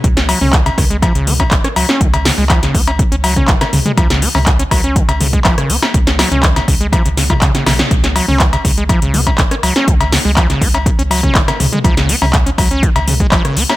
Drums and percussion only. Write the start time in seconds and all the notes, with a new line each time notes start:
0.04 kick, closed hi-hat
0.17 snare, closed hi-hat
0.29 open hi-hat, cowbell
0.42 mid tom
0.53 kick, clap, closed hi-hat
0.66 closed hi-hat, cowbell
0.78 kick, cross-stick, open hi-hat
0.91 closed hi-hat
1.02 kick, closed hi-hat, cowbell
1.15 closed hi-hat
1.27 open hi-hat, mid tom
1.40 kick, cowbell
1.51 kick, clap, closed hi-hat
1.64 cross-stick, closed hi-hat
1.76 open hi-hat, cowbell
1.89 snare
2.01 kick, closed hi-hat
2.14 closed hi-hat, cowbell
2.25 snare, open hi-hat
2.50 kick, clap, closed hi-hat, cowbell
2.63 snare, closed hi-hat
2.75 kick, open hi-hat
2.88 closed hi-hat, cowbell
2.99 kick, closed hi-hat
3.12 closed hi-hat
3.24 open hi-hat, cowbell
3.36 kick, closed hi-hat, mid tom
3.48 kick, clap, closed hi-hat
3.61 cross-stick, snare, closed hi-hat, cowbell
3.73 open hi-hat, mid tom
3.86 closed hi-hat, mid tom
3.98 kick, closed hi-hat, cowbell
4.10 snare, closed hi-hat
4.22 open hi-hat
4.35 mid tom, cowbell
4.46 kick, clap, closed hi-hat
4.59 closed hi-hat
4.71 kick, cross-stick, open hi-hat, cowbell
4.84 closed hi-hat
4.96 kick, closed hi-hat
5.09 closed hi-hat, cowbell
5.21 open hi-hat, mid tom
5.33 kick, closed hi-hat
5.45 kick, clap, closed hi-hat, cowbell
5.58 cross-stick, closed hi-hat
5.70 open hi-hat
5.83 snare, closed hi-hat, cowbell
5.94 kick, closed hi-hat
6.07 snare, closed hi-hat
6.19 snare, open hi-hat, cowbell
6.32 closed hi-hat, mid tom
6.43 kick, clap, closed hi-hat
6.56 snare, closed hi-hat, cowbell
6.68 kick, open hi-hat
6.81 closed hi-hat
6.93 kick, closed hi-hat, cowbell
7.06 closed hi-hat
7.17 snare, open hi-hat
7.30 kick, mid tom, cowbell
7.42 kick, clap, closed hi-hat
7.55 snare, closed hi-hat
7.67 snare, open hi-hat, mid tom, cowbell
7.79 snare, closed hi-hat, mid tom
7.91 kick, closed hi-hat
8.04 snare, closed hi-hat
8.16 open hi-hat, cowbell
8.28 mid tom
8.40 kick, clap, closed hi-hat
8.53 closed hi-hat, cowbell
8.65 kick, open hi-hat
8.78 closed hi-hat
8.89 kick, closed hi-hat, cowbell
9.02 closed hi-hat
9.14 open hi-hat, mid tom
9.27 kick, cowbell
9.38 kick, clap, closed hi-hat
9.51 cross-stick, closed hi-hat
9.63 open hi-hat, cowbell
9.76 snare, closed hi-hat
9.88 kick, closed hi-hat
10.01 closed hi-hat, cowbell
10.12 snare, open hi-hat
10.37 kick, clap, closed hi-hat, cowbell
10.50 snare, closed hi-hat
10.61 kick, open hi-hat
10.75 closed hi-hat, cowbell
10.86 kick, closed hi-hat
10.99 closed hi-hat
11.11 open hi-hat, cowbell
11.23 kick, closed hi-hat, mid tom
11.35 kick, clap, closed hi-hat
11.48 cross-stick, snare, closed hi-hat, cowbell
11.60 open hi-hat, mid tom
11.73 closed hi-hat, mid tom
11.84 kick, closed hi-hat, cowbell
11.97 snare, closed hi-hat
12.09 open hi-hat
12.22 mid tom, cowbell
12.33 kick, clap, closed hi-hat
12.47 closed hi-hat
12.58 kick, open hi-hat, cowbell
12.71 closed hi-hat
12.83 kick, closed hi-hat
12.96 closed hi-hat, cowbell
13.08 open hi-hat, mid tom
13.20 kick, closed hi-hat
13.32 kick, clap, closed hi-hat, cowbell
13.45 cross-stick, closed hi-hat
13.57 open hi-hat
13.70 snare, cowbell